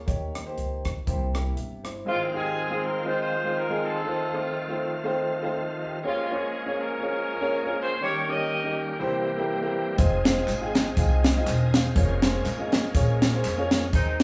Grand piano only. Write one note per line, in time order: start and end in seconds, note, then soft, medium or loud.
0.06 0.81 D#3 medium
0.06 0.35 A#3 medium
0.06 0.35 D#4 medium
0.06 0.35 G4 medium
0.06 0.36 C#5 medium
0.45 0.88 A#3 medium
0.45 0.88 D#4 medium
0.45 0.89 G4 medium
0.45 0.89 C5 medium
1.06 1.81 C3 medium
1.06 1.25 A#3 medium
1.06 1.26 E4 medium
1.06 1.26 G4 medium
1.06 1.26 C5 medium
1.33 1.56 A#3 medium
1.33 1.57 E4 medium
1.33 1.55 G4 medium
1.33 1.57 A#4 medium
1.57 1.84 G4 soft
1.57 1.83 E5 medium
1.84 2.32 E4 soft
1.84 2.05 C5 medium
2.05 2.80 G#2 medium
2.05 2.24 G#3 medium
2.05 2.25 C4 medium
2.05 2.25 D#4 medium
2.05 2.25 F4 medium
2.05 2.25 C5 medium
2.32 2.56 G#3 medium
2.32 2.56 C4 medium
2.32 2.56 D#4 medium
2.32 2.57 F4 medium
2.32 2.57 G4 medium
2.69 2.95 G#3 medium
2.69 2.95 C4 medium
2.69 2.95 D#4 medium
2.69 2.95 F4 medium
2.69 2.96 C5 medium
3.04 3.33 G#3 medium
3.04 3.33 C4 medium
3.04 3.33 D#4 medium
3.04 3.33 F4 medium
3.04 3.34 C5 medium
3.43 3.60 G#3 medium
3.43 3.60 C4 medium
3.43 3.60 D#4 medium
3.43 3.60 F4 medium
3.43 3.61 C5 medium
3.69 3.94 G#3 medium
3.69 3.94 C4 medium
3.69 3.94 D#4 medium
3.69 3.95 F4 medium
3.69 3.95 G#4 medium
4.05 4.24 A3 medium
4.05 4.24 C4 medium
4.05 4.24 D#4 medium
4.05 4.24 F4 medium
4.05 4.25 C5 medium
4.33 4.55 A3 medium
4.33 4.55 C4 medium
4.33 4.55 D#4 medium
4.33 4.56 F4 medium
4.33 4.56 C5 medium
4.68 4.93 A3 medium
4.68 4.93 C4 medium
4.68 4.94 D#4 medium
4.68 4.94 F4 medium
4.68 4.94 C5 medium
5.04 5.32 A3 loud
5.04 5.32 C4 medium
5.04 5.32 D#4 medium
5.04 5.32 F4 medium
5.04 5.33 C5 loud
5.42 5.58 A3 medium
5.42 5.58 C4 medium
5.42 5.53 D#4 medium
5.42 5.54 F4 medium
5.42 5.52 C5 loud
5.54 5.81 D#4 medium
5.54 5.80 C5 medium
5.83 6.29 G4 medium
5.83 6.29 D#5 medium
6.03 6.22 A#3 medium
6.03 6.22 C#4 medium
6.03 6.22 F4 medium
6.03 6.22 G#4 medium
6.03 6.23 C#5 medium
6.30 6.53 A#3 medium
6.30 6.53 C#4 medium
6.30 6.53 F4 medium
6.30 6.54 G#4 medium
6.30 6.54 C#5 medium
6.66 6.91 A#3 medium
6.66 6.91 C#4 medium
6.66 6.91 F4 medium
6.66 6.91 G#4 medium
6.66 6.92 C#5 medium
7.01 7.29 A#3 medium
7.01 7.30 C#4 medium
7.01 7.30 F4 medium
7.01 7.30 G#4 medium
7.01 7.30 C#5 medium
7.40 7.56 A#3 medium
7.40 7.56 C#4 medium
7.40 7.56 F4 medium
7.40 7.57 G#4 medium
7.40 7.57 C#5 loud
7.65 7.90 A#3 medium
7.65 7.90 C#4 medium
7.65 7.91 F4 medium
7.65 7.91 G#4 medium
7.65 7.91 C#5 medium
8.00 8.74 D#3 medium
8.00 8.19 A#3 medium
8.00 8.19 C#4 medium
8.00 8.20 D#4 medium
8.00 8.20 G4 medium
8.00 8.20 C#5 medium
8.28 8.50 A#3 medium
8.28 8.51 C#4 medium
8.28 8.50 D#4 medium
8.28 8.51 G4 medium
8.28 8.51 C#5 medium
8.63 8.88 A#3 medium
8.63 8.89 C#4 medium
8.63 8.89 D#4 medium
8.63 8.89 G4 medium
8.63 8.89 D#5 medium
8.99 9.73 C3 medium
8.99 9.27 A#3 medium
8.99 9.27 C4 medium
8.99 9.27 E4 medium
8.99 9.28 G4 medium
8.99 9.28 C5 loud
9.37 9.53 A#3 medium
9.37 9.53 C4 medium
9.37 9.54 E4 medium
9.37 9.54 G4 medium
9.37 9.54 A#4 loud
9.61 9.87 A#3 medium
9.61 9.87 C4 medium
9.61 9.87 E4 medium
9.61 9.87 G4 medium
9.61 9.88 A#4 loud
9.96 10.16 G#3 medium
9.96 10.16 C4 medium
9.96 10.17 D#4 medium
9.96 10.17 F4 medium
9.96 10.17 C5 loud
10.24 10.47 G#3 medium
10.24 10.48 C4 medium
10.24 10.48 D#4 medium
10.24 10.48 F4 medium
10.24 10.48 C5 loud
10.61 10.86 G#3 medium
10.61 10.86 C4 medium
10.61 10.86 D#4 medium
10.61 10.86 F4 medium
10.61 10.87 G#4 loud
10.96 11.24 G#3 loud
10.96 11.25 C4 medium
10.96 11.25 D#4 medium
10.96 11.25 F4 medium
10.96 11.25 G#4 loud
11.35 11.51 G#3 medium
11.35 11.51 C4 medium
11.35 11.52 D#4 medium
11.35 11.52 F4 medium
11.35 11.47 D#5 loud
11.48 11.73 C5 medium
11.48 11.73 G#5 medium
11.75 11.95 G#4 medium
11.75 12.22 F5 medium
11.96 12.14 A#3 medium
11.96 12.14 C#4 medium
11.96 12.15 F4 medium
11.96 12.15 G#4 medium
11.96 12.15 C#5 medium
12.22 12.45 A#3 medium
12.22 12.45 C#4 medium
12.22 12.45 F4 medium
12.22 12.46 G#4 medium
12.22 12.46 C5 medium
12.58 12.83 A#3 loud
12.58 12.83 C#4 medium
12.58 12.84 F4 medium
12.58 12.84 G#4 medium
12.58 12.84 D#5 loud
12.94 13.22 A#3 medium
12.94 13.22 C#4 medium
12.94 13.22 F4 medium
12.94 13.23 G#4 medium
12.94 13.23 C#5 loud
13.33 13.49 A#3 medium
13.33 13.49 C#4 medium
13.33 13.49 F4 medium
13.33 13.49 G#4 medium
13.33 13.50 C5 loud
13.57 13.82 A#3 medium
13.57 13.82 C#4 medium
13.57 13.82 F4 medium
13.57 13.83 G#4 medium
13.57 13.83 C#5 loud
13.92 14.23 D#3 medium
13.92 14.11 D#4 medium
13.92 14.11 G#4 medium
13.92 14.12 C5 medium
14.20 14.23 D#4 medium